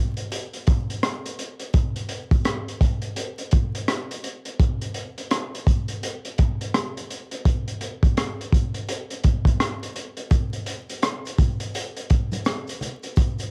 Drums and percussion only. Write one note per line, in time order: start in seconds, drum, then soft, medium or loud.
0.17 closed hi-hat medium
0.32 closed hi-hat medium
0.53 closed hi-hat soft
0.67 kick medium
0.67 closed hi-hat medium
0.90 closed hi-hat medium
1.03 cross-stick loud
1.03 closed hi-hat medium
1.26 closed hi-hat medium
1.39 closed hi-hat medium
1.59 closed hi-hat medium
1.74 kick loud
1.74 closed hi-hat medium
1.96 closed hi-hat medium
2.09 closed hi-hat medium
2.31 kick medium
2.31 closed hi-hat medium
2.45 cross-stick loud
2.45 closed hi-hat loud
2.68 closed hi-hat soft
2.81 kick medium
2.81 closed hi-hat medium
3.02 closed hi-hat soft
3.16 closed hi-hat medium
3.38 closed hi-hat medium
3.51 kick medium
3.51 closed hi-hat medium
3.75 closed hi-hat medium
3.88 cross-stick loud
3.88 closed hi-hat medium
4.11 closed hi-hat medium
4.24 closed hi-hat medium
4.45 closed hi-hat medium
4.60 kick loud
4.60 closed hi-hat medium
4.82 closed hi-hat medium
4.94 closed hi-hat medium
5.18 closed hi-hat medium
5.31 cross-stick loud
5.31 closed hi-hat loud
5.55 closed hi-hat soft
5.67 kick medium
5.67 closed hi-hat medium
5.88 closed hi-hat medium
6.03 closed hi-hat medium
6.25 closed hi-hat medium
6.38 kick medium
6.38 closed hi-hat medium
6.61 closed hi-hat medium
6.74 cross-stick loud
6.74 closed hi-hat medium
6.97 closed hi-hat medium
7.10 closed hi-hat medium
7.31 closed hi-hat medium
7.45 kick loud
7.45 closed hi-hat medium
7.68 closed hi-hat medium
7.81 closed hi-hat medium
8.03 kick medium
8.03 closed hi-hat soft
8.17 cross-stick loud
8.17 closed hi-hat loud
8.41 closed hi-hat soft
8.53 kick medium
8.53 closed hi-hat medium
8.74 closed hi-hat soft
8.89 closed hi-hat loud
9.11 closed hi-hat medium
9.24 kick medium
9.24 closed hi-hat medium
9.45 kick medium
9.45 closed hi-hat medium
9.60 cross-stick loud
9.60 closed hi-hat medium
9.83 closed hi-hat medium
9.96 closed hi-hat medium
10.17 closed hi-hat medium
10.31 kick loud
10.31 closed hi-hat medium
10.31 maracas medium
10.53 closed hi-hat medium
10.53 maracas soft
10.66 closed hi-hat medium
10.66 maracas soft
10.89 closed hi-hat soft
10.89 maracas soft
11.02 cross-stick loud
11.02 closed hi-hat loud
11.02 maracas medium
11.25 closed hi-hat medium
11.25 maracas soft
11.38 kick medium
11.38 closed hi-hat medium
11.38 low conga medium
11.38 maracas soft
11.60 closed hi-hat medium
11.60 maracas soft
11.74 closed hi-hat medium
11.74 maracas medium
11.97 closed hi-hat medium
11.97 maracas soft
12.10 kick medium
12.10 closed hi-hat medium
12.10 maracas soft
12.32 closed hi-hat medium
12.32 high conga medium
12.32 maracas soft
12.45 cross-stick loud
12.45 closed hi-hat medium
12.45 maracas medium
12.67 closed hi-hat medium
12.67 maracas soft
12.81 closed hi-hat medium
12.81 low conga medium
12.81 maracas soft
13.03 closed hi-hat soft
13.03 maracas soft
13.16 kick medium
13.16 closed hi-hat medium
13.16 maracas medium
13.39 closed hi-hat medium
13.39 maracas soft